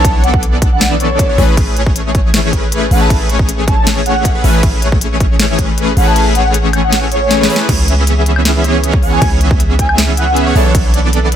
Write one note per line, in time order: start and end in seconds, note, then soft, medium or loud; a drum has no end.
0.00 1.36 B1 medium
0.00 0.11 A5 medium
0.05 0.22 E3 medium
0.05 0.22 B3 medium
0.05 0.22 D4 medium
0.05 0.22 A4 medium
0.05 0.22 C#5 loud
0.05 kick loud
0.05 closed hi-hat medium
0.24 1.27 E3 medium
0.24 1.27 B3 medium
0.24 1.27 D4 medium
0.24 1.27 A4 medium
0.24 1.27 D5 loud
0.24 0.40 F#5 loud
0.24 closed hi-hat medium
0.34 kick loud
0.43 closed hi-hat medium
0.62 kick loud
0.62 closed hi-hat medium
0.72 0.78 F#5 medium
0.81 0.87 F#5 medium
0.81 snare loud
0.81 closed hi-hat medium
1.00 1.42 C#5 medium
1.00 closed hi-hat medium
1.19 kick loud
1.19 closed hi-hat medium
1.29 1.36 E3 medium
1.29 1.36 B3 medium
1.29 1.36 D4 medium
1.29 1.36 A4 medium
1.29 1.36 C#5 loud
1.38 2.89 A1 medium
1.38 1.55 E3 medium
1.38 1.55 A3 medium
1.38 1.55 C#4 medium
1.38 1.55 G#4 medium
1.38 1.55 B4 loud
1.38 kick medium
1.38 open hi-hat medium
1.57 1.74 E3 medium
1.57 1.74 A3 medium
1.57 1.74 C#4 medium
1.57 1.74 G#4 medium
1.57 1.74 B4 medium
1.57 kick loud
1.57 closed hi-hat medium
1.57 crash medium
1.76 2.51 E3 medium
1.76 2.51 A3 medium
1.76 2.51 C#4 medium
1.76 2.51 G#4 medium
1.76 2.51 C#5 loud
1.76 closed hi-hat medium
1.86 kick loud
1.96 closed hi-hat medium
2.15 kick loud
2.15 closed hi-hat medium
2.34 snare loud
2.34 closed hi-hat medium
2.34 crash soft
2.53 3.08 E3 loud
2.53 3.08 A3 loud
2.53 3.08 C#4 medium
2.53 3.08 G#4 medium
2.53 3.08 B4 loud
2.53 kick medium
2.53 closed hi-hat medium
2.72 closed hi-hat medium
2.91 4.42 A1 medium
2.91 2.99 F#5 medium
2.91 open hi-hat medium
3.01 3.17 A5 medium
3.10 3.27 E3 loud
3.10 3.27 A3 medium
3.10 3.27 C#4 medium
3.10 3.27 G#4 medium
3.10 3.27 B4 loud
3.10 kick loud
3.10 closed hi-hat medium
3.10 crash medium
3.29 4.33 E3 medium
3.29 4.33 A3 medium
3.29 4.33 C#4 medium
3.29 4.33 G#4 medium
3.29 4.33 C#5 loud
3.29 closed hi-hat medium
3.39 kick loud
3.49 closed hi-hat medium
3.68 3.84 A5 medium
3.68 kick loud
3.68 closed hi-hat medium
3.87 snare loud
3.87 closed hi-hat medium
3.87 crash soft
4.06 4.42 F#5 loud
4.06 closed hi-hat medium
4.25 kick loud
4.25 closed hi-hat medium
4.35 4.42 E3 medium
4.35 4.42 A3 medium
4.35 4.42 C#4 medium
4.35 4.42 G#4 medium
4.35 4.42 B4 loud
4.44 5.95 A1 medium
4.44 4.61 E3 medium
4.44 4.61 A3 medium
4.44 4.61 C#4 medium
4.44 4.61 G#4 medium
4.44 4.61 B4 loud
4.44 4.50 E5 medium
4.44 open hi-hat medium
4.54 4.60 E5 medium
4.63 4.80 E3 medium
4.63 4.80 A3 medium
4.63 4.80 C#4 medium
4.63 4.80 G#4 medium
4.63 4.80 B4 medium
4.63 kick loud
4.63 closed hi-hat medium
4.63 crash soft
4.82 5.57 E3 medium
4.82 5.57 A3 medium
4.82 5.57 C#4 medium
4.82 5.57 G#4 medium
4.82 5.57 C#5 loud
4.82 closed hi-hat medium
4.92 kick loud
5.01 closed hi-hat medium
5.20 kick loud
5.20 closed hi-hat medium
5.40 snare loud
5.40 closed hi-hat medium
5.40 crash soft
5.59 6.14 E3 loud
5.59 6.14 A3 medium
5.59 6.14 C#4 loud
5.59 6.14 G#4 medium
5.59 6.14 B4 loud
5.59 kick medium
5.59 closed hi-hat medium
5.78 closed hi-hat medium
5.97 7.48 A1 medium
5.97 6.05 F#5 loud
5.97 open hi-hat loud
6.07 6.23 A5 medium
6.16 6.33 E3 medium
6.16 6.33 A3 medium
6.16 6.33 C#4 medium
6.16 6.33 G#4 medium
6.16 6.33 B4 loud
6.16 closed hi-hat medium
6.16 crash soft
6.35 7.38 E3 medium
6.35 7.38 A3 medium
6.35 7.38 C#4 medium
6.35 7.38 G#4 medium
6.35 7.38 C#5 loud
6.35 6.51 F#5 loud
6.35 closed hi-hat medium
6.54 closed hi-hat medium
6.73 closed hi-hat medium
6.73 high woodblock medium
6.83 6.89 F#5 medium
6.92 6.99 F#5 medium
6.92 snare loud
6.92 closed hi-hat medium
6.92 crash soft
7.12 7.65 C#5 loud
7.12 closed hi-hat medium
7.31 snare medium
7.31 closed hi-hat medium
7.41 7.48 E3 medium
7.41 7.48 A3 medium
7.41 7.48 C#4 medium
7.41 7.48 G#4 medium
7.41 7.48 B4 loud
7.41 snare medium
7.50 7.67 E3 loud
7.50 7.67 A3 medium
7.50 7.67 C#4 medium
7.50 7.67 G#4 medium
7.50 7.67 B4 loud
7.50 open hi-hat loud
7.56 snare loud
7.69 9.20 C#2 loud
7.69 7.86 E3 medium
7.69 7.86 B3 medium
7.69 7.86 C#4 medium
7.69 7.86 G#4 medium
7.69 7.86 C#5 medium
7.69 kick loud
7.69 closed hi-hat medium
7.69 crash loud
7.88 8.62 E3 medium
7.88 8.62 B3 medium
7.88 8.62 C#4 medium
7.88 8.62 G#4 medium
7.88 8.62 E5 loud
7.88 closed hi-hat medium
8.07 closed hi-hat medium
8.26 closed hi-hat medium
8.36 high woodblock medium
8.45 snare loud
8.45 closed hi-hat medium
8.45 crash soft
8.64 9.20 E3 loud
8.64 9.20 B3 medium
8.64 9.20 C#4 loud
8.64 9.20 G#4 medium
8.64 9.20 C#5 loud
8.64 closed hi-hat medium
8.84 closed hi-hat medium
8.94 kick loud
9.03 9.11 F#5 medium
9.03 open hi-hat medium
9.13 9.28 G#5 medium
9.22 10.54 C#2 loud
9.22 9.39 E3 loud
9.22 9.39 B3 medium
9.22 9.39 C#4 medium
9.22 9.39 G#4 medium
9.22 9.39 C#5 loud
9.22 kick loud
9.22 closed hi-hat medium
9.22 crash soft
9.41 10.44 E3 medium
9.41 10.44 B3 medium
9.41 10.44 C#4 medium
9.41 10.44 G#4 medium
9.41 10.44 E5 loud
9.41 closed hi-hat medium
9.51 kick loud
9.60 closed hi-hat medium
9.79 9.95 G#5 loud
9.79 kick medium
9.79 closed hi-hat medium
9.89 high woodblock medium
9.98 snare loud
9.98 closed hi-hat medium
9.98 crash soft
10.17 10.54 F#5 medium
10.17 closed hi-hat medium
10.36 closed hi-hat medium
10.46 10.53 E3 medium
10.46 10.53 B3 medium
10.46 10.53 C#4 medium
10.46 10.53 G#4 medium
10.46 10.53 C#5 loud
10.56 11.36 B1 medium
10.56 10.72 E3 medium
10.56 10.72 B3 medium
10.56 10.72 D4 medium
10.56 10.72 A4 medium
10.56 10.72 C#5 loud
10.56 10.62 E5 medium
10.56 open hi-hat medium
10.66 10.71 E5 medium
10.75 10.92 E3 medium
10.75 10.92 B3 medium
10.75 10.92 D4 medium
10.75 10.92 A4 medium
10.75 10.92 C#5 medium
10.75 kick loud
10.75 closed hi-hat medium
10.75 crash soft
10.94 11.36 E3 medium
10.94 11.36 B3 medium
10.94 11.36 D4 medium
10.94 11.36 A4 medium
10.94 11.36 D5 loud
10.94 closed hi-hat medium
11.13 closed hi-hat medium
11.32 closed hi-hat medium